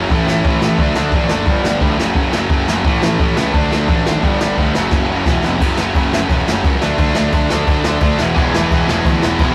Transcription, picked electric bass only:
0, 0, Header, 1, 2, 480
1, 0, Start_track
1, 0, Tempo, 344234
1, 139, Time_signature, 4, 2, 24, 8
1, 13314, End_track
2, 0, Start_track
2, 0, Title_t, "Picked electric bass"
2, 0, Program_c, 0, 34
2, 147, Note_on_c, 0, 33, 101
2, 337, Note_off_c, 0, 33, 0
2, 376, Note_on_c, 0, 33, 81
2, 571, Note_off_c, 0, 33, 0
2, 621, Note_on_c, 0, 33, 88
2, 814, Note_off_c, 0, 33, 0
2, 867, Note_on_c, 0, 33, 91
2, 1058, Note_off_c, 0, 33, 0
2, 1094, Note_on_c, 0, 38, 89
2, 1290, Note_off_c, 0, 38, 0
2, 1341, Note_on_c, 0, 38, 88
2, 1535, Note_off_c, 0, 38, 0
2, 1562, Note_on_c, 0, 33, 84
2, 1763, Note_off_c, 0, 33, 0
2, 1813, Note_on_c, 0, 30, 79
2, 2010, Note_off_c, 0, 30, 0
2, 2049, Note_on_c, 0, 31, 92
2, 2248, Note_off_c, 0, 31, 0
2, 2286, Note_on_c, 0, 31, 84
2, 2487, Note_off_c, 0, 31, 0
2, 2524, Note_on_c, 0, 38, 97
2, 2726, Note_off_c, 0, 38, 0
2, 2771, Note_on_c, 0, 30, 94
2, 2970, Note_off_c, 0, 30, 0
2, 2999, Note_on_c, 0, 30, 93
2, 3203, Note_off_c, 0, 30, 0
2, 3250, Note_on_c, 0, 30, 88
2, 3450, Note_off_c, 0, 30, 0
2, 3486, Note_on_c, 0, 30, 85
2, 3688, Note_off_c, 0, 30, 0
2, 3748, Note_on_c, 0, 30, 86
2, 3941, Note_off_c, 0, 30, 0
2, 3970, Note_on_c, 0, 33, 90
2, 4170, Note_off_c, 0, 33, 0
2, 4212, Note_on_c, 0, 33, 80
2, 4412, Note_off_c, 0, 33, 0
2, 4454, Note_on_c, 0, 33, 93
2, 4653, Note_off_c, 0, 33, 0
2, 4709, Note_on_c, 0, 37, 91
2, 4902, Note_off_c, 0, 37, 0
2, 4935, Note_on_c, 0, 38, 93
2, 5134, Note_off_c, 0, 38, 0
2, 5208, Note_on_c, 0, 38, 82
2, 5393, Note_off_c, 0, 38, 0
2, 5423, Note_on_c, 0, 33, 85
2, 5619, Note_off_c, 0, 33, 0
2, 5676, Note_on_c, 0, 32, 90
2, 5866, Note_off_c, 0, 32, 0
2, 5902, Note_on_c, 0, 31, 98
2, 6098, Note_off_c, 0, 31, 0
2, 6172, Note_on_c, 0, 31, 77
2, 6356, Note_off_c, 0, 31, 0
2, 6388, Note_on_c, 0, 38, 95
2, 6582, Note_off_c, 0, 38, 0
2, 6641, Note_on_c, 0, 30, 91
2, 6830, Note_off_c, 0, 30, 0
2, 6854, Note_on_c, 0, 30, 87
2, 7054, Note_off_c, 0, 30, 0
2, 7114, Note_on_c, 0, 30, 92
2, 7306, Note_off_c, 0, 30, 0
2, 7337, Note_on_c, 0, 28, 85
2, 7535, Note_off_c, 0, 28, 0
2, 7597, Note_on_c, 0, 29, 83
2, 7787, Note_off_c, 0, 29, 0
2, 7820, Note_on_c, 0, 30, 93
2, 7983, Note_off_c, 0, 30, 0
2, 8061, Note_on_c, 0, 30, 81
2, 8224, Note_off_c, 0, 30, 0
2, 8296, Note_on_c, 0, 30, 100
2, 8460, Note_off_c, 0, 30, 0
2, 8538, Note_on_c, 0, 30, 92
2, 8701, Note_off_c, 0, 30, 0
2, 8775, Note_on_c, 0, 28, 83
2, 8939, Note_off_c, 0, 28, 0
2, 9051, Note_on_c, 0, 30, 78
2, 9203, Note_off_c, 0, 30, 0
2, 9258, Note_on_c, 0, 37, 87
2, 9421, Note_off_c, 0, 37, 0
2, 9515, Note_on_c, 0, 38, 87
2, 9672, Note_off_c, 0, 38, 0
2, 9743, Note_on_c, 0, 38, 89
2, 9904, Note_off_c, 0, 38, 0
2, 9992, Note_on_c, 0, 38, 88
2, 10150, Note_off_c, 0, 38, 0
2, 10222, Note_on_c, 0, 38, 97
2, 10383, Note_off_c, 0, 38, 0
2, 10468, Note_on_c, 0, 38, 94
2, 10627, Note_off_c, 0, 38, 0
2, 10696, Note_on_c, 0, 38, 85
2, 10858, Note_off_c, 0, 38, 0
2, 10941, Note_on_c, 0, 38, 89
2, 11102, Note_off_c, 0, 38, 0
2, 11174, Note_on_c, 0, 38, 97
2, 11337, Note_off_c, 0, 38, 0
2, 11422, Note_on_c, 0, 28, 80
2, 11582, Note_off_c, 0, 28, 0
2, 11665, Note_on_c, 0, 28, 97
2, 11823, Note_off_c, 0, 28, 0
2, 11902, Note_on_c, 0, 28, 81
2, 12061, Note_off_c, 0, 28, 0
2, 12148, Note_on_c, 0, 28, 101
2, 12304, Note_off_c, 0, 28, 0
2, 12380, Note_on_c, 0, 28, 96
2, 12539, Note_off_c, 0, 28, 0
2, 12621, Note_on_c, 0, 38, 96
2, 12780, Note_off_c, 0, 38, 0
2, 12857, Note_on_c, 0, 28, 92
2, 13016, Note_off_c, 0, 28, 0
2, 13095, Note_on_c, 0, 28, 92
2, 13255, Note_off_c, 0, 28, 0
2, 13314, End_track
0, 0, End_of_file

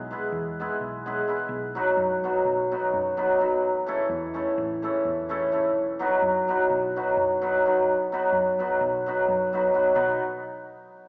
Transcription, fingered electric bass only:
0, 0, Header, 1, 2, 480
1, 0, Start_track
1, 0, Tempo, 470219
1, 1522, Time_signature, 9, 3, 24, 8
1, 11311, End_track
2, 0, Start_track
2, 0, Title_t, "Fingered electric bass"
2, 0, Program_c, 0, 33
2, 0, Note_on_c, 0, 35, 100
2, 134, Note_off_c, 0, 35, 0
2, 329, Note_on_c, 0, 40, 95
2, 625, Note_off_c, 0, 40, 0
2, 822, Note_on_c, 0, 35, 82
2, 1241, Note_off_c, 0, 35, 0
2, 1519, Note_on_c, 0, 35, 97
2, 1815, Note_off_c, 0, 35, 0
2, 2011, Note_on_c, 0, 42, 85
2, 2307, Note_off_c, 0, 42, 0
2, 2502, Note_on_c, 0, 35, 94
2, 2798, Note_off_c, 0, 35, 0
2, 2997, Note_on_c, 0, 42, 81
2, 3699, Note_off_c, 0, 42, 0
2, 3699, Note_on_c, 0, 33, 91
2, 3992, Note_off_c, 0, 33, 0
2, 4178, Note_on_c, 0, 40, 94
2, 4474, Note_off_c, 0, 40, 0
2, 4673, Note_on_c, 0, 33, 94
2, 4967, Note_off_c, 0, 33, 0
2, 5154, Note_on_c, 0, 40, 80
2, 5859, Note_off_c, 0, 40, 0
2, 5859, Note_on_c, 0, 35, 109
2, 6152, Note_off_c, 0, 35, 0
2, 6351, Note_on_c, 0, 42, 79
2, 6643, Note_off_c, 0, 42, 0
2, 6838, Note_on_c, 0, 35, 85
2, 7131, Note_off_c, 0, 35, 0
2, 7318, Note_on_c, 0, 42, 96
2, 8006, Note_off_c, 0, 42, 0
2, 8006, Note_on_c, 0, 35, 94
2, 8302, Note_off_c, 0, 35, 0
2, 8495, Note_on_c, 0, 42, 91
2, 8790, Note_off_c, 0, 42, 0
2, 8990, Note_on_c, 0, 35, 86
2, 9282, Note_off_c, 0, 35, 0
2, 9477, Note_on_c, 0, 42, 80
2, 9890, Note_off_c, 0, 42, 0
2, 10168, Note_on_c, 0, 35, 99
2, 10408, Note_off_c, 0, 35, 0
2, 11311, End_track
0, 0, End_of_file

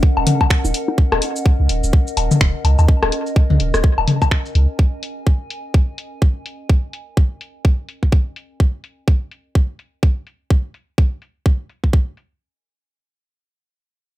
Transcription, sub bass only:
0, 0, Header, 1, 2, 480
1, 0, Start_track
1, 0, Key_signature, -6, "minor"
1, 0, Tempo, 476190
1, 987, Time_signature, 4, 2, 24, 8
1, 14292, End_track
2, 0, Start_track
2, 0, Title_t, "Sub bass"
2, 0, Program_c, 0, 38
2, 170, Note_on_c, 0, 27, 92
2, 249, Note_off_c, 0, 27, 0
2, 648, Note_on_c, 0, 27, 104
2, 728, Note_off_c, 0, 27, 0
2, 1128, Note_on_c, 0, 27, 96
2, 1208, Note_off_c, 0, 27, 0
2, 1609, Note_on_c, 0, 37, 90
2, 1689, Note_off_c, 0, 37, 0
2, 1706, Note_on_c, 0, 27, 88
2, 1822, Note_off_c, 0, 27, 0
2, 1848, Note_on_c, 0, 27, 90
2, 1928, Note_off_c, 0, 27, 0
2, 2186, Note_on_c, 0, 27, 92
2, 2302, Note_off_c, 0, 27, 0
2, 2427, Note_on_c, 0, 27, 98
2, 2543, Note_off_c, 0, 27, 0
2, 2664, Note_on_c, 0, 37, 85
2, 2782, Note_off_c, 0, 37, 0
2, 2808, Note_on_c, 0, 39, 93
2, 2888, Note_off_c, 0, 39, 0
2, 3050, Note_on_c, 0, 27, 94
2, 3129, Note_off_c, 0, 27, 0
2, 3529, Note_on_c, 0, 37, 90
2, 3609, Note_off_c, 0, 37, 0
2, 3626, Note_on_c, 0, 27, 86
2, 3742, Note_off_c, 0, 27, 0
2, 3769, Note_on_c, 0, 27, 89
2, 3848, Note_off_c, 0, 27, 0
2, 4009, Note_on_c, 0, 27, 91
2, 4089, Note_off_c, 0, 27, 0
2, 4587, Note_on_c, 0, 37, 98
2, 4703, Note_off_c, 0, 37, 0
2, 14292, End_track
0, 0, End_of_file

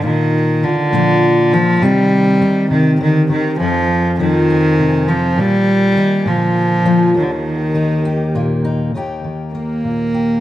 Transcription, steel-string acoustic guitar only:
0, 0, Header, 1, 2, 480
1, 0, Start_track
1, 0, Key_signature, -3, "major"
1, 0, Tempo, 593472
1, 32, Time_signature, 6, 3, 24, 8
1, 8413, End_track
2, 0, Start_track
2, 0, Title_t, "Steel-string acoustic guitar"
2, 0, Program_c, 0, 25
2, 0, Note_on_c, 0, 51, 67
2, 27, Note_on_c, 0, 46, 73
2, 501, Note_off_c, 0, 51, 0
2, 509, Note_off_c, 0, 46, 0
2, 510, Note_on_c, 0, 51, 61
2, 515, Note_on_c, 0, 65, 62
2, 723, Note_off_c, 0, 65, 0
2, 748, Note_on_c, 0, 46, 75
2, 749, Note_off_c, 0, 51, 0
2, 752, Note_on_c, 0, 53, 61
2, 759, Note_on_c, 0, 58, 62
2, 762, Note_on_c, 0, 62, 62
2, 769, Note_on_c, 0, 65, 69
2, 1219, Note_off_c, 0, 53, 0
2, 1229, Note_on_c, 0, 53, 69
2, 1230, Note_off_c, 0, 62, 0
2, 1240, Note_on_c, 0, 62, 63
2, 1441, Note_off_c, 0, 53, 0
2, 1445, Note_off_c, 0, 58, 0
2, 1446, Note_off_c, 0, 62, 0
2, 1468, Note_off_c, 0, 46, 0
2, 1471, Note_on_c, 0, 48, 76
2, 1476, Note_on_c, 0, 51, 57
2, 1479, Note_off_c, 0, 65, 0
2, 1480, Note_on_c, 0, 60, 63
2, 1486, Note_on_c, 0, 63, 61
2, 1493, Note_on_c, 0, 67, 62
2, 1940, Note_off_c, 0, 51, 0
2, 1946, Note_off_c, 0, 63, 0
2, 1949, Note_on_c, 0, 51, 58
2, 1950, Note_off_c, 0, 48, 0
2, 1956, Note_on_c, 0, 63, 58
2, 2186, Note_on_c, 0, 48, 66
2, 2427, Note_off_c, 0, 48, 0
2, 2430, Note_on_c, 0, 50, 73
2, 2653, Note_off_c, 0, 51, 0
2, 2663, Note_on_c, 0, 51, 67
2, 2669, Note_off_c, 0, 50, 0
2, 2883, Note_off_c, 0, 63, 0
2, 2885, Note_off_c, 0, 60, 0
2, 2891, Note_off_c, 0, 67, 0
2, 2906, Note_off_c, 0, 51, 0
2, 2910, Note_on_c, 0, 41, 73
2, 3390, Note_on_c, 0, 53, 63
2, 3398, Note_on_c, 0, 60, 58
2, 3640, Note_on_c, 0, 68, 66
2, 3875, Note_on_c, 0, 48, 70
2, 4105, Note_off_c, 0, 60, 0
2, 4115, Note_on_c, 0, 60, 61
2, 4320, Note_off_c, 0, 41, 0
2, 4320, Note_off_c, 0, 53, 0
2, 4323, Note_off_c, 0, 48, 0
2, 4325, Note_off_c, 0, 68, 0
2, 4348, Note_on_c, 0, 46, 77
2, 4352, Note_off_c, 0, 60, 0
2, 4824, Note_on_c, 0, 51, 66
2, 4828, Note_off_c, 0, 46, 0
2, 4831, Note_on_c, 0, 63, 62
2, 5041, Note_off_c, 0, 63, 0
2, 5061, Note_on_c, 0, 46, 73
2, 5066, Note_off_c, 0, 51, 0
2, 5542, Note_on_c, 0, 53, 77
2, 5546, Note_on_c, 0, 62, 67
2, 5757, Note_off_c, 0, 53, 0
2, 5759, Note_off_c, 0, 62, 0
2, 5776, Note_on_c, 0, 39, 73
2, 5785, Note_off_c, 0, 46, 0
2, 6264, Note_on_c, 0, 51, 65
2, 6269, Note_on_c, 0, 63, 57
2, 6512, Note_on_c, 0, 67, 68
2, 6752, Note_on_c, 0, 46, 72
2, 6757, Note_on_c, 0, 58, 66
2, 6982, Note_off_c, 0, 63, 0
2, 6992, Note_on_c, 0, 63, 61
2, 7204, Note_off_c, 0, 63, 0
2, 7204, Note_off_c, 0, 67, 0
2, 7206, Note_off_c, 0, 58, 0
2, 7223, Note_off_c, 0, 39, 0
2, 7231, Note_off_c, 0, 51, 0
2, 7232, Note_on_c, 0, 39, 52
2, 7233, Note_off_c, 0, 46, 0
2, 7240, Note_on_c, 0, 51, 40
2, 7245, Note_on_c, 0, 58, 45
2, 7250, Note_on_c, 0, 63, 46
2, 7257, Note_on_c, 0, 67, 46
2, 7472, Note_off_c, 0, 51, 0
2, 7475, Note_on_c, 0, 51, 47
2, 7712, Note_off_c, 0, 58, 0
2, 7722, Note_on_c, 0, 58, 42
2, 7957, Note_on_c, 0, 46, 46
2, 8194, Note_off_c, 0, 67, 0
2, 8203, Note_on_c, 0, 67, 50
2, 8413, Note_off_c, 0, 39, 0
2, 8413, Note_off_c, 0, 46, 0
2, 8413, Note_off_c, 0, 51, 0
2, 8413, Note_off_c, 0, 58, 0
2, 8413, Note_off_c, 0, 63, 0
2, 8413, Note_off_c, 0, 67, 0
2, 8413, End_track
0, 0, End_of_file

